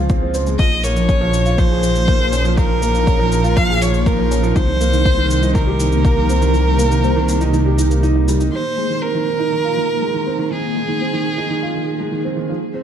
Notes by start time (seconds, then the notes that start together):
Already playing: C#2 F3 A#3 C4 C#4 D#4 F4 G#4
0.09 C4, kick, shaker
0.22 C4
0.34 C5, shaker
0.47 G#3, shaker
0.59 A#1 F3 D#5, kick, shaker
0.84 A#3 C#5, shaker
0.96 F3, shaker
1.08 C#4, kick, shaker
1.21 F3
1.33 shaker
1.46 F4, shaker
1.58 F3 C5, kick, shaker
1.71 G#4
1.83 F3, shaker
1.95 shaker
2.08 A#3, kick, shaker
2.20 F3
2.32 C#4, shaker
2.45 F3, shaker
2.57 F3 A#4, kick, shaker
2.82 A#3, shaker
2.94 F3, shaker
3.07 C#4, kick, shaker
3.19 F3
3.32 shaker
3.44 F4, shaker
3.56 F3 F5, kick, shaker
3.69 G#4
3.81 F3 C#5, shaker
3.94 shaker
4.06 A#3 A#4, kick, shaker
4.19 F3
4.31 C#4, shaker
4.43 F3, shaker
4.56 C2 D#3 C5, kick, shaker
4.70 G4
4.81 A#3, shaker
4.93 D#3, shaker
5.05 C4, kick, shaker
5.18 D#3
5.30 shaker
5.43 D#4, shaker
5.55 D#3 A#4, kick, shaker
5.67 G4
5.80 D#3, shaker
5.92 shaker
6.04 A#3, kick, shaker
6.17 D#3
6.29 C4, shaker
6.41 D#3, shaker
6.54 D#3, shaker
6.79 A#3, shaker
6.91 D#3, shaker
7.04 C4, shaker
7.16 D#3
7.29 shaker
7.41 D#4, shaker
7.53 D#3, shaker
7.66 G4
7.78 D#4, shaker
7.91 A#3, shaker
8.03 D#4, shaker
8.15 D#4
8.28 G3, shaker
8.40 D#4, shaker
8.52 D#3 C5
8.78 G#3
8.90 D#3
9.02 C4 A#4
9.15 D#3
9.39 D#4
9.44 G#4
9.52 D#3
9.65 F4
9.77 D#3
10.02 G#3
10.14 D#3
10.26 C4
10.39 D#3
10.51 D#3 G#4
10.76 G#3
10.88 D#3
11.01 C4
11.13 D#3
11.38 D#4
11.50 D#3
11.63 F4
11.75 D#3
12.00 G#3
12.12 D#3
12.24 C4
12.37 D#3
12.49 C#2 F3
12.74 C4